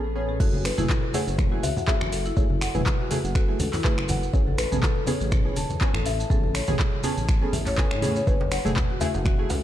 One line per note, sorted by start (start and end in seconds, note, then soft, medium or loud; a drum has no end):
0.00 0.38 A1 medium
0.00 0.42 G#4 medium
0.04 0.10 A4 medium
0.15 0.37 B3 medium
0.15 0.37 C#4 medium
0.15 0.37 G#4 medium
0.15 0.28 C#5 medium
0.29 0.39 G#4 loud
0.40 0.71 F#1 loud
0.40 0.48 A3 medium
0.40 0.48 E4 medium
0.40 0.52 F#4 loud
0.40 0.48 G#4 medium
0.40 0.64 A4 loud
0.40 kick loud
0.40 crash loud
0.40 high conga medium
0.40 maracas soft
0.53 0.59 F#4 medium
0.53 high conga loud
0.64 0.77 A4 medium
0.64 1.16 B4 loud
0.64 finger snap medium
0.64 open hi-hat medium
0.64 muted conga medium
0.64 maracas loud
0.78 0.86 F#1 medium
0.78 0.84 A3 medium
0.78 0.88 E4 loud
0.78 0.84 E4 medium
0.78 0.84 G#4 loud
0.78 mid tom medium
0.78 low conga loud
0.78 maracas medium
0.89 kick loud
0.89 clap loud
0.89 mid tom medium
0.89 maracas soft
1.03 muted conga soft
1.14 1.21 A3 loud
1.14 1.21 E4 medium
1.14 1.21 G#4 loud
1.14 1.65 C#5 loud
1.14 1.26 F#5 loud
1.14 open hi-hat loud
1.14 high conga medium
1.14 maracas loud
1.27 1.57 F#1 loud
1.27 maracas medium
1.38 finger snap medium
1.38 kick loud
1.38 mid tom medium
1.38 muted conga medium
1.38 low conga loud
1.38 maracas soft
1.52 1.62 A3 medium
1.52 1.62 E4 medium
1.52 1.62 F#4 medium
1.52 1.62 G#4 medium
1.63 1.72 C#2 medium
1.63 1.70 F#4 medium
1.63 1.74 E5 loud
1.63 open hi-hat loud
1.63 high conga medium
1.63 maracas medium
1.76 1.87 F#5 medium
1.76 muted conga soft
1.76 high conga medium
1.76 low conga loud
1.76 maracas medium
1.87 1.95 A3 loud
1.87 1.95 E4 medium
1.87 2.00 F#4 loud
1.87 1.95 G#4 loud
1.87 2.34 E5 loud
1.87 kick loud
1.87 clap loud
1.87 maracas soft
2.01 2.31 F#1 medium
2.01 2.07 F#4 medium
2.01 finger snap medium
2.01 low conga loud
2.12 2.25 A4 medium
2.12 open hi-hat loud
2.12 muted conga medium
2.12 maracas loud
2.25 2.36 E4 loud
2.25 maracas medium
2.36 2.68 F#1 loud
2.36 2.44 A3 medium
2.36 2.44 E4 medium
2.36 2.44 G#4 medium
2.36 2.76 C#5 loud
2.36 kick loud
2.36 high conga medium
2.36 maracas soft
2.50 high conga loud
2.61 2.73 F#5 loud
2.61 finger snap loud
2.61 open hi-hat loud
2.61 muted conga medium
2.61 maracas medium
2.75 2.82 F#1 medium
2.75 2.81 A3 medium
2.75 2.81 E4 medium
2.75 2.81 G#4 loud
2.75 3.12 B4 loud
2.75 mid tom medium
2.75 low conga loud
2.75 maracas soft
2.86 kick loud
2.86 clap loud
2.86 mid tom medium
2.86 maracas soft
2.99 3.10 F#4 medium
2.99 muted conga soft
3.11 3.18 A3 loud
3.11 3.18 E4 medium
3.11 3.18 F#4 medium
3.11 3.18 G#4 loud
3.11 3.33 A4 medium
3.11 open hi-hat medium
3.11 high conga loud
3.11 maracas loud
3.24 3.54 F#1 loud
3.24 3.35 F#5 medium
3.24 maracas medium
3.35 3.47 F#4 loud
3.35 3.81 A4 loud
3.35 finger snap medium
3.35 kick loud
3.35 muted conga medium
3.35 maracas soft
3.49 3.59 A3 medium
3.49 3.59 E4 medium
3.49 3.55 F#4 medium
3.49 3.59 G#4 medium
3.59 3.69 C#2 medium
3.59 3.73 A4 medium
3.59 open hi-hat medium
3.59 high conga medium
3.59 low conga loud
3.59 maracas loud
3.73 3.83 E4 loud
3.73 clap soft
3.73 open hi-hat medium
3.73 muted conga soft
3.73 low conga loud
3.73 maracas medium
3.84 3.92 A3 loud
3.84 3.92 E4 medium
3.84 3.92 G#4 loud
3.84 4.35 B4 loud
3.84 kick loud
3.84 clap loud
3.84 high conga medium
3.84 maracas soft
3.98 4.28 F#1 medium
3.98 finger snap loud
4.09 4.21 F#5 loud
4.09 open hi-hat loud
4.09 muted conga medium
4.09 high conga loud
4.09 low conga loud
4.09 maracas loud
4.23 maracas medium
4.33 4.65 A1 loud
4.33 4.41 B3 medium
4.33 4.41 C#4 medium
4.33 4.41 G#4 medium
4.33 4.59 C#5 loud
4.33 kick loud
4.33 high conga medium
4.33 maracas soft
4.47 4.57 A4 medium
4.47 high conga loud
4.58 4.65 A4 medium
4.58 5.09 B4 loud
4.58 finger snap loud
4.58 open hi-hat medium
4.58 muted conga medium
4.58 maracas medium
4.72 4.79 A1 medium
4.72 4.78 B3 medium
4.72 4.78 C#4 medium
4.72 4.78 G#4 loud
4.72 4.82 A5 medium
4.72 mid tom medium
4.72 low conga loud
4.72 maracas medium
4.83 4.95 A4 loud
4.83 kick loud
4.83 clap loud
4.83 mid tom medium
4.83 maracas soft
4.95 5.02 A4 medium
4.95 muted conga soft
5.07 5.15 B3 loud
5.07 5.15 C#4 medium
5.07 5.15 G#4 loud
5.07 5.80 C#5 loud
5.07 5.20 C#5 medium
5.07 open hi-hat loud
5.07 high conga loud
5.07 maracas loud
5.21 5.51 A1 loud
5.21 5.31 G#4 loud
5.21 maracas medium
5.31 finger snap medium
5.31 kick loud
5.31 mid tom medium
5.31 muted conga medium
5.31 low conga medium
5.31 maracas soft
5.45 5.55 B3 medium
5.45 5.55 C#4 medium
5.45 5.55 G#4 medium
5.56 5.66 E1 medium
5.56 5.69 A5 loud
5.56 open hi-hat medium
5.56 high conga medium
5.56 maracas loud
5.69 muted conga soft
5.69 high conga medium
5.69 low conga loud
5.69 maracas medium
5.81 5.88 B3 loud
5.81 5.88 C#4 medium
5.81 5.88 G#4 loud
5.81 6.07 C#5 loud
5.81 kick loud
5.81 clap loud
5.81 maracas soft
5.94 6.25 A1 medium
5.94 6.05 A4 medium
5.94 finger snap loud
5.94 low conga medium
6.06 6.13 A4 medium
6.06 7.00 E5 loud
6.06 open hi-hat medium
6.06 muted conga soft
6.06 maracas medium
6.19 6.30 A5 medium
6.19 maracas medium
6.30 6.61 A1 loud
6.30 6.38 B3 medium
6.30 6.38 C#4 medium
6.30 6.38 G#4 medium
6.30 6.42 A4 loud
6.30 kick loud
6.30 high conga medium
6.30 maracas soft
6.43 6.50 A4 medium
6.43 high conga loud
6.54 6.68 C#5 medium
6.54 finger snap loud
6.54 open hi-hat medium
6.54 muted conga medium
6.54 maracas medium
6.67 6.76 A1 medium
6.67 6.74 B3 medium
6.67 6.74 C#4 medium
6.67 6.78 G#4 loud
6.67 6.74 G#4 loud
6.67 mid tom medium
6.67 low conga loud
6.67 maracas medium
6.79 kick loud
6.79 clap loud
6.79 mid tom medium
6.79 maracas soft
6.92 muted conga soft
7.03 7.11 B3 medium
7.03 7.11 C#4 medium
7.03 7.11 G#4 loud
7.03 7.16 A5 loud
7.03 open hi-hat medium
7.03 high conga medium
7.03 maracas loud
7.17 7.47 A1 loud
7.17 maracas medium
7.28 finger snap medium
7.28 kick loud
7.28 muted conga soft
7.28 maracas soft
7.42 7.52 B3 medium
7.42 7.52 C#4 medium
7.42 7.52 G#4 medium
7.42 7.52 A4 medium
7.53 7.93 A1 loud
7.53 7.65 E5 medium
7.53 open hi-hat medium
7.53 high conga medium
7.53 low conga loud
7.53 maracas loud
7.66 7.77 C#5 loud
7.66 clap soft
7.66 open hi-hat medium
7.66 muted conga soft
7.66 low conga loud
7.66 maracas medium
7.78 7.85 B3 medium
7.78 7.85 C#4 medium
7.78 7.85 G#4 loud
7.78 8.24 A4 loud
7.78 7.90 G#5 medium
7.78 kick loud
7.78 clap loud
7.78 high conga medium
7.78 maracas soft
7.91 8.21 A2 medium
7.91 8.01 C#5 medium
7.91 finger snap loud
8.02 8.24 B3 medium
8.02 8.24 C#4 medium
8.02 8.24 G#4 medium
8.02 8.15 G#5 medium
8.02 open hi-hat medium
8.02 muted conga soft
8.02 high conga loud
8.02 low conga loud
8.02 maracas medium
8.16 8.26 C#5 loud
8.16 maracas medium
8.26 8.58 F#1 loud
8.26 8.34 A3 medium
8.26 8.34 E4 medium
8.26 8.34 G#4 medium
8.26 8.53 B4 loud
8.26 kick loud
8.26 high conga medium
8.26 maracas soft
8.40 djembe slap loud
8.40 high conga loud
8.40 djembe tone loud
8.51 9.02 C#5 loud
8.51 8.64 F#5 loud
8.51 finger snap medium
8.51 open hi-hat medium
8.51 muted conga medium
8.51 maracas loud
8.65 8.73 F#1 medium
8.65 8.71 A3 medium
8.65 8.71 E4 medium
8.65 8.71 G#4 loud
8.65 mid tom medium
8.65 djembe tone medium
8.65 low conga loud
8.65 maracas medium
8.76 kick loud
8.76 clap loud
8.76 mid tom medium
8.76 djembe bass medium
8.76 maracas soft
8.89 9.00 F#4 medium
8.89 muted conga soft
8.89 djembe tone medium
9.01 9.08 A3 loud
9.01 9.08 E4 medium
9.01 9.08 F#4 medium
9.01 9.08 G#4 loud
9.01 9.51 E5 loud
9.01 open hi-hat medium
9.01 high conga medium
9.01 djembe bass medium
9.01 maracas medium
9.14 9.44 F#1 loud
9.14 9.25 F#5 medium
9.14 djembe slap medium
9.14 djembe tone medium
9.14 maracas soft
9.24 9.37 F#4 loud
9.24 finger snap medium
9.24 kick loud
9.24 mid tom medium
9.24 muted conga soft
9.24 low conga medium
9.24 maracas soft
9.38 9.49 A3 medium
9.38 9.49 E4 medium
9.38 9.45 F#4 medium
9.38 9.49 G#4 medium
9.38 djembe tone medium
9.50 9.59 C#2 medium
9.50 9.63 A4 medium
9.50 9.63 F#5 loud
9.50 open hi-hat medium
9.50 djembe slap loud
9.50 high conga medium
9.50 maracas medium